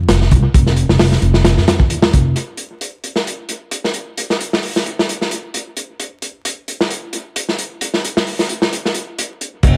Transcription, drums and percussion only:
0.09 snare, closed hi-hat
0.22 snare
0.31 kick, closed hi-hat
0.54 kick, closed hi-hat
0.67 snare
0.76 closed hi-hat
0.89 snare
0.99 snare, open hi-hat
1.12 snare
1.22 closed hi-hat
1.34 snare
1.45 snare, closed hi-hat
1.58 snare
1.68 snare, closed hi-hat
1.80 kick
1.90 closed hi-hat
2.03 snare
2.13 kick, closed hi-hat
2.36 closed hi-hat
2.57 closed hi-hat
2.81 closed hi-hat
3.04 closed hi-hat
3.16 snare
3.27 closed hi-hat
3.49 closed hi-hat
3.71 closed hi-hat
3.84 snare
3.94 closed hi-hat
4.17 closed hi-hat
4.30 snare
4.40 closed hi-hat
4.53 snare
4.63 open hi-hat
4.76 snare
4.86 closed hi-hat
4.99 snare
5.09 closed hi-hat
5.21 snare
5.31 closed hi-hat
5.54 closed hi-hat
5.77 closed hi-hat
6.00 closed hi-hat
6.22 closed hi-hat
6.45 closed hi-hat
6.68 closed hi-hat
6.81 snare
6.90 closed hi-hat
7.13 closed hi-hat
7.36 closed hi-hat
7.49 snare
7.58 closed hi-hat
7.81 closed hi-hat
7.94 snare
8.04 closed hi-hat
8.17 snare
8.27 open hi-hat
8.39 snare
8.49 closed hi-hat
8.62 snare
8.73 closed hi-hat
8.85 snare
8.94 closed hi-hat
9.19 closed hi-hat
9.41 closed hi-hat
9.63 kick, closed hi-hat, crash

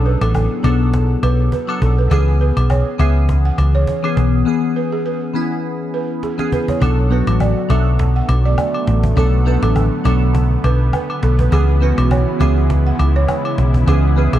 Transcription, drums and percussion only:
0.06 cajon slap
0.21 cajon slap, high agogo
0.34 cajon bass, low woodblock
0.51 cajon slap
0.64 cajon bass, cajon slap, high agogo
0.81 cajon slap
0.94 cajon bass, cajon slap
1.10 cajon slap
1.23 cajon slap, high agogo
1.40 cajon slap
1.52 cajon bass
1.68 cajon slap, high agogo
1.82 cajon slap
1.98 cajon slap
2.11 cajon bass, high agogo
2.27 cajon slap
2.41 cajon slap
2.57 cajon slap, high agogo
2.70 cajon bass, low woodblock
2.87 cajon slap
2.99 cajon bass, cajon slap, high agogo
3.16 cajon slap
3.29 cajon bass, cajon slap
3.45 cajon slap
3.58 cajon slap, high agogo
3.75 cajon slap
3.87 cajon bass
4.03 cajon slap, high agogo
4.17 cajon slap
4.33 cajon slap
6.23 cajon slap
6.39 cajon slap
6.52 cajon bass
6.68 cajon bass
6.82 cajon bass, high agogo
6.98 cajon slap
7.12 cajon slap
7.27 cajon slap, high agogo
7.40 cajon bass, low woodblock
7.57 cajon slap
7.70 cajon bass, cajon slap, high agogo
7.87 cajon slap
7.99 cajon bass, cajon slap
8.15 cajon slap
8.29 cajon slap, high agogo
8.46 cajon slap
8.58 cajon bass, low woodblock
8.74 cajon slap, high agogo
8.87 cajon slap
9.04 cajon bass
9.17 cajon bass, high agogo
9.33 cajon slap
9.47 cajon slap
9.63 cajon slap, high agogo
9.76 cajon bass, low woodblock
9.92 cajon slap
10.05 cajon bass, cajon slap, high agogo
10.22 cajon slap
10.35 cajon bass, cajon slap
10.51 cajon slap
10.64 cajon slap, high agogo
10.81 cajon slap
10.93 cajon bass, low woodblock
11.09 cajon slap, high agogo
11.23 cajon slap
11.39 cajon bass
11.52 cajon bass, high agogo
11.69 cajon slap
11.82 cajon slap
11.98 cajon slap, high agogo
12.11 cajon bass, low woodblock
12.28 cajon slap
12.41 cajon bass, cajon slap, high agogo
12.57 cajon slap
12.70 cajon bass, cajon slap
12.86 cajon slap
12.99 cajon slap, high agogo
13.16 cajon slap
13.28 cajon bass, low woodblock
13.45 high agogo
13.58 cajon slap
13.74 cajon bass
13.88 cajon bass, cajon slap, high agogo
14.04 cajon slap
14.18 cajon slap
14.33 cajon slap, high agogo

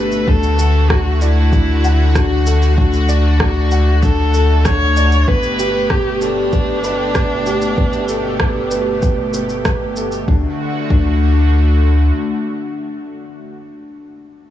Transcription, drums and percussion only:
0.12 shaker
0.28 kick
0.43 shaker
0.59 shaker
0.90 kick, cross-stick
1.21 shaker
1.53 kick, shaker
1.84 shaker
2.15 kick, cross-stick, shaker
2.46 shaker
2.62 shaker
2.78 kick
2.93 shaker
3.09 shaker
3.40 kick, cross-stick
3.71 shaker
4.03 kick, shaker
4.34 shaker
4.65 kick, cross-stick, shaker
4.97 shaker
5.12 shaker
5.28 kick
5.43 shaker
5.59 shaker
5.90 kick, cross-stick
6.22 shaker
6.53 kick, shaker
6.84 shaker
7.15 kick, cross-stick, shaker
7.46 shaker
7.62 shaker
7.78 kick
7.93 shaker
8.08 shaker
8.40 kick, cross-stick
8.71 shaker
9.02 kick, shaker
9.34 shaker
9.49 shaker
9.65 kick, cross-stick, shaker
9.96 shaker
10.12 shaker
10.28 kick
10.90 kick

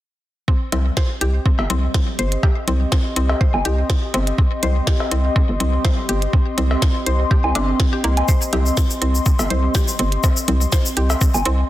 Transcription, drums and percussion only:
0.48 kick
0.72 closed hi-hat, cowbell, low conga
0.97 kick, snare
1.21 closed hi-hat
1.46 kick
1.59 cowbell
1.70 closed hi-hat, low conga
1.94 kick, snare, low conga
2.19 closed hi-hat
2.32 closed hi-hat
2.43 kick, cowbell
2.68 closed hi-hat, low conga
2.92 kick, snare
3.16 closed hi-hat
3.29 cowbell
3.41 kick
3.54 low woodblock
3.65 closed hi-hat
3.90 kick, snare
4.14 closed hi-hat, cowbell
4.27 closed hi-hat
4.38 kick
4.63 closed hi-hat, low conga
4.87 kick, snare
5.00 cowbell
5.11 closed hi-hat
5.36 kick
5.60 closed hi-hat, low conga
5.85 kick, snare, cowbell, low conga
6.09 closed hi-hat
6.22 closed hi-hat
6.33 kick
6.58 closed hi-hat, low conga
6.71 cowbell
6.82 kick, snare
7.06 closed hi-hat
7.31 kick
7.44 low woodblock
7.55 closed hi-hat, cowbell
7.80 kick, snare
8.04 closed hi-hat
8.17 closed hi-hat, low woodblock
8.28 kick, cabasa
8.42 cabasa
8.53 closed hi-hat, cowbell, low conga
8.66 cabasa
8.77 kick, snare, cabasa
8.90 cabasa
9.02 closed hi-hat
9.15 cabasa
9.26 kick, cabasa
9.39 cowbell, cabasa
9.50 closed hi-hat, low conga
9.75 kick, snare, low conga, cabasa
9.88 cabasa
9.99 closed hi-hat
10.12 closed hi-hat
10.24 kick, cowbell, cabasa
10.37 cabasa
10.48 closed hi-hat, low conga
10.61 cabasa
10.72 kick, snare, cabasa
10.85 cabasa
10.97 closed hi-hat
11.10 cowbell, cabasa
11.21 kick, cabasa
11.34 cabasa, low woodblock
11.45 closed hi-hat

